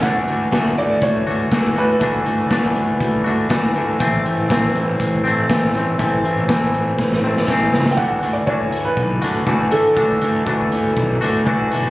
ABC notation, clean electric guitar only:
X:1
M:4/4
L:1/8
Q:1/4=121
K:D
V:1 name="Clean electric guitar"
[E,A,DF] [A,DF] [E,A,DF]3 [A,DF] [E,A,DF] [A,DF] | [E,A,DF] [A,DF] [E,A,DF]3 [A,DF] [E,A,DF] [A,DF] | [E,A,=C] [A,C] [E,A,C]3 [A,C] [E,A,C] [A,C] | [E,A,=C] [A,C] [E,A,C]3 [A,C] [E,A,C] [A,C] |
[E,A,DF] [A,DF] [E,A,DF]3 [A,DF] [E,A,DF] [A,DF] | [E,A,DF] [A,DF] [E,A,DF]3 [A,DF] [E,A,DF] [A,DF] |]